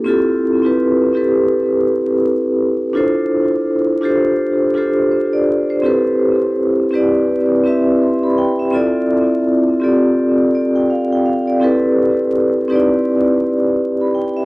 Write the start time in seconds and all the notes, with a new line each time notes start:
0.04 C4 E4 F4 G4 A4
0.62 C4 E4 F4 G4
0.66 B4
1.13 C4 E4 G4 A4
1.17 B4
2.93 D4 E4 F4 A4 C5
4.01 D4 F4 G4 A4
4.05 C5
4.74 D4 F4 G4 A4 C5
5.11 C5
5.33 D5
5.70 C5
5.82 C4 E4 G4 A4
5.86 B4
6.91 C4 E4 G4 B4
6.95 D5
7.64 C4 E4 G4 B4 E5
8.02 C6
8.23 B5
8.38 G5
8.59 E5
8.71 C4 E4 F4 A4
8.75 D5
9.80 C4 F4 G4 A4
9.84 D5
10.55 D5
10.76 G5
10.90 F5
11.13 G5
11.26 F5
11.47 D5
11.60 C4 E4 G4 A4
11.64 B4
12.68 C4 D#4 G4 B4
12.72 E4 D5
14.01 B5
14.15 G5
14.37 E5